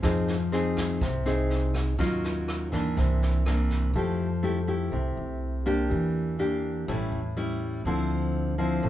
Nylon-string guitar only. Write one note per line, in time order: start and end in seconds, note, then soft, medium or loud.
0.02 0.98 F3 medium
0.02 0.35 C4 medium
0.02 0.35 D#4 medium
0.02 0.35 G#4 medium
0.52 1.01 C4 medium
0.52 1.01 D#4 medium
0.52 1.01 G#4 medium
1.02 1.97 C3 medium
1.26 1.95 C4 medium
1.26 1.95 D#4 medium
1.26 1.95 G#4 medium
1.99 2.94 D#3 medium
1.99 2.68 F#3 medium
1.99 2.69 C#4 medium
1.99 2.69 F4 medium
2.72 3.41 E3 medium
2.72 3.42 A#3 medium
2.72 3.42 D4 medium
2.97 3.92 C3 medium
3.46 3.91 E3 medium
3.46 3.91 A#3 medium
3.46 3.91 D4 medium
3.95 4.90 F3 medium
3.95 4.26 A3 medium
3.95 4.26 E4 medium
3.95 4.27 G4 medium
4.43 4.57 A3 medium
4.43 4.58 E4 medium
4.43 4.58 G4 medium
4.67 5.61 A3 soft
4.67 5.61 E4 medium
4.67 5.61 G4 medium
4.92 5.87 C3 soft
5.66 6.35 A#3 medium
5.66 6.35 D4 medium
5.66 6.35 G4 medium
5.89 6.85 E3 medium
6.39 6.86 A#3 medium
6.39 6.86 D4 medium
6.39 6.86 G4 medium
6.88 7.83 A2 medium
6.88 7.19 G3 medium
6.88 7.19 C#4 medium
6.88 7.20 E4 medium
7.37 7.81 G3 soft
7.37 7.82 C#4 medium
7.37 7.82 E4 medium
7.86 8.81 D3 medium
7.86 8.55 F3 medium
7.86 8.55 C4 medium
7.86 8.56 E4 medium
8.58 8.89 F3 medium
8.58 8.89 C4 medium
8.58 8.89 E4 medium
8.83 8.89 A2 medium